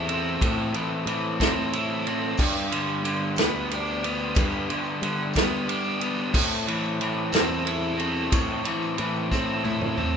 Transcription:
Already playing: E2 A2 E3 E4
0.07 C4 E4 A4, ride
0.41 A2 E3 C4 E4 A4, kick, ride
0.73 E3 C4 E4 A4, ride
1.05 A2 E3 C4 E4 A4, ride
1.38 C4 E4 A4, kick, snare, ride
1.72 E3 C4 E4 A4, ride
2.05 C4 E4 A4, ride
2.37 G2 D3 G3 B3 D4 G4, kick, tambourine, crash
2.54 tambourine
2.71 D3 G3 B3 D4 G4, ride
2.88 tambourine
3.02 D3 G3 B3 D4 G4, ride, tambourine
3.36 D2 G3 B3 D4 G4, snare, ride, tambourine
3.70 G3 B3 D4 G4, ride
3.86 tambourine
4.03 G3 B3 D4 G4, ride, tambourine
4.19 tambourine
4.35 G2 D3 G3 B3, kick, ride, tambourine
4.39 D4 G4
4.52 tambourine
4.68 D3 G3 B3 D4 G4, ride
4.84 tambourine
5.01 D3 G3 B3 D4 G4, ride, tambourine
5.34 D4 G4, kick, snare, ride, tambourine
5.38 G3 B3
5.66 G3 B3 D4 G4, ride
5.84 tambourine
6.00 G3 B3 D4 G4, ride, tambourine
6.18 tambourine
6.33 A2 E3 C4 E4 A4, kick, tambourine, crash
6.52 tambourine
6.67 E3 C4 E4 A4, ride
6.84 tambourine
6.99 E3 C4 E4 A4, ride, tambourine
7.32 E2 C4 E4 A4, snare, ride, tambourine
7.65 E3 C4 E4 A4, ride
7.84 tambourine
7.97 C4 A4, ride, tambourine
8.01 C4 E4
8.17 tambourine
8.31 A2 E3 C4 E4 A4, kick, ride, tambourine
8.64 E3 C4 E4 A4, ride, tambourine
8.82 tambourine
8.96 A2 E3 C4 E4, ride
9.00 A4
9.16 tambourine
9.30 C4 E4 A4, kick, snare, tambourine
9.63 E3 C4 E4 A4, high tom
9.81 mid tom
9.96 C4 E4 A4, mid tom

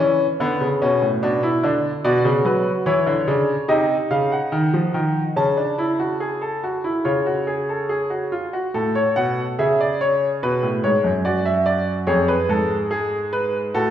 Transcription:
0.00 E3 C#4
0.40 D3 B3
0.61 C#3
0.82 B2 C#4
1.02 A2
1.23 B2 D4
1.43 E4
1.64 D3 D4
2.04 B2 F#4 D5
2.25 C#3
2.45 F#3 B4
2.86 E3 E4 C#5
3.07 D3
3.27 C#3 D4
3.68 C3 D#4 D#5
4.11 C#3 F5
4.32 F#5
4.52 D#3
4.73 F3
4.94 D#3
5.36 C#3 C#4 A5
5.57 D4
5.78 E4
5.99 F#4
6.20 G#4
6.42 A4
6.64 F#4
6.84 E4
7.05 C#3 F4 C#5
7.26 F#4
7.47 G#4
7.69 A4
7.89 G#4
8.10 F#4
8.32 F4
8.53 F#4
8.74 A2 A4
8.95 C#5
9.16 B2 F#5
9.59 C#3 G#4 E5
9.81 D5
10.01 C#5
10.43 B2 B4
10.63 A2
10.84 G#2 C#5
11.04 F#2
11.25 F#4 D5
11.45 E5
11.66 D5
12.07 F2 G#4 C#5
12.28 B4
12.49 G#2 A4
12.91 G#4
13.33 B4
13.74 A2 F#4 A4

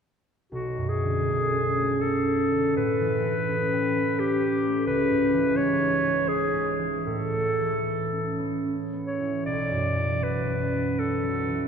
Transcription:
0.52 B1 F#4
0.77 F#2
0.89 G#4
1.02 D3
1.27 A3
1.52 C#4
1.77 A3
2.01 C#4 A4
2.25 A3
2.51 D3
2.76 A2 B4
3.01 E3
3.25 A3
3.48 C#4
3.73 G4
3.97 C#4
4.19 G4
4.41 C#4
4.65 A3
4.86 C#2 B4
5.11 G#2
5.33 E3
5.56 G#3 C#5
5.80 D#4
6.03 G#3
6.28 D#4 G#4
6.53 G#3
6.78 E3
7.06 A2 A4
7.33 A3
7.60 E3
7.86 B3
8.13 C#4
8.39 B3
8.65 C#4
8.93 B3
9.07 C#5
9.20 E3
9.46 B1 D5
9.71 F#2
9.96 E3
10.20 F#3 B4
10.47 C#4
10.73 F#3
10.98 C#4 A4
11.24 F#3
11.48 E3

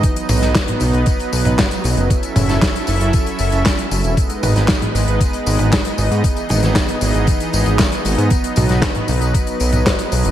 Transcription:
Already playing: D#4 D#5
0.03 F#3 B3 B4, kick, closed hi-hat, tambourine
0.16 closed hi-hat, tambourine
0.29 B1, open hi-hat, mid tom, tambourine
0.41 B1, snare, closed hi-hat, tambourine
0.55 kick, snare, clap, closed hi-hat, tambourine
0.68 closed hi-hat, mid tom
0.80 B1, open hi-hat, tambourine
0.93 B1, closed hi-hat, tambourine
1.06 kick, closed hi-hat, tambourine
1.19 closed hi-hat, tambourine
1.33 B1, open hi-hat, tambourine
1.45 B1, closed hi-hat, mid tom, tambourine
1.58 kick, snare, clap, closed hi-hat, tambourine
1.71 closed hi-hat, tambourine
1.84 B1, open hi-hat, tambourine
1.97 F#1, closed hi-hat, tambourine
2.10 C#4 E4 A4 E5, kick, closed hi-hat, tambourine
2.23 closed hi-hat, tambourine
2.36 F#1, open hi-hat, mid tom, tambourine
2.49 F#1, snare, closed hi-hat, tambourine
2.62 kick, snare, clap, closed hi-hat, tambourine
2.75 closed hi-hat, tambourine
2.87 F#1, open hi-hat, tambourine
3.00 F#1, closed hi-hat, tambourine
3.13 kick, closed hi-hat, tambourine
3.26 closed hi-hat, tambourine
3.39 F#1, open hi-hat, tambourine
3.52 F#1, closed hi-hat, tambourine
3.65 kick, snare, clap, closed hi-hat, tambourine
3.78 closed hi-hat, tambourine
3.91 F#1, open hi-hat, tambourine
4.04 E1, closed hi-hat, tambourine
4.17 G#3 B3 D#4 B4 D#5, kick, closed hi-hat, tambourine
4.30 closed hi-hat, tambourine
4.43 G#1, open hi-hat, mid tom, tambourine
4.56 G#1, snare, closed hi-hat, tambourine
4.68 kick, snare, clap, closed hi-hat, tambourine
4.82 closed hi-hat, mid tom
4.95 G#1, open hi-hat, tambourine
5.07 G#1, closed hi-hat, tambourine
5.20 kick, closed hi-hat, tambourine
5.33 closed hi-hat, tambourine
5.46 G#1, open hi-hat, tambourine
5.59 G#1, closed hi-hat, mid tom, tambourine
5.72 kick, snare, clap, closed hi-hat, tambourine
5.85 closed hi-hat, tambourine
5.98 G#1, open hi-hat, tambourine
6.11 G#2, closed hi-hat, tambourine
6.24 E3 G#4, kick, closed hi-hat, tambourine
6.36 closed hi-hat, tambourine
6.49 G#1, open hi-hat, mid tom, tambourine
6.63 G#1, snare, closed hi-hat, tambourine
6.75 kick, snare, clap, closed hi-hat, tambourine
6.89 closed hi-hat, tambourine
7.01 G#1, open hi-hat, tambourine
7.14 G#1, closed hi-hat, tambourine
7.27 kick, closed hi-hat, tambourine
7.40 closed hi-hat, tambourine
7.53 G#1, open hi-hat, tambourine
7.66 G#1, closed hi-hat, tambourine
7.79 kick, snare, clap, closed hi-hat, tambourine
7.92 closed hi-hat, tambourine
8.05 G#1, open hi-hat, tambourine
8.18 G#2, closed hi-hat, tambourine
8.30 F#3 B4, kick, closed hi-hat, tambourine
8.44 closed hi-hat, tambourine
8.56 B1, open hi-hat, mid tom, tambourine
8.69 B1, snare, closed hi-hat, tambourine
8.82 kick, snare, clap, closed hi-hat, tambourine
8.95 closed hi-hat, mid tom
9.08 B1, open hi-hat, tambourine
9.21 B1, closed hi-hat, tambourine
9.34 kick, closed hi-hat, tambourine
9.47 closed hi-hat, tambourine
9.60 B1, open hi-hat, tambourine
9.72 B1, closed hi-hat, mid tom, tambourine
9.86 kick, snare, clap, closed hi-hat, tambourine
9.99 closed hi-hat, tambourine
10.12 B1, open hi-hat, tambourine
10.25 F#1, closed hi-hat, tambourine

